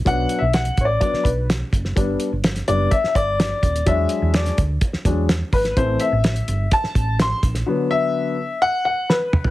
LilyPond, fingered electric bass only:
\new Staff \with { instrumentName = "Fingered electric bass" } { \clef bass \time 4/4 \key b \phrygian \tempo 4 = 126 b,,8 r16 b,,8. a,,8 r8 b,,4 fis,,8 | g,,8 r16 g,,8. fis,,8 r8 g,,4 ees,,8 | e,8 r16 e,8. d,8 r8 e,4 gis,,8 | a,,8 r16 a,,8. g,,8 r8 a,,4 bes,,8 |
r1 | }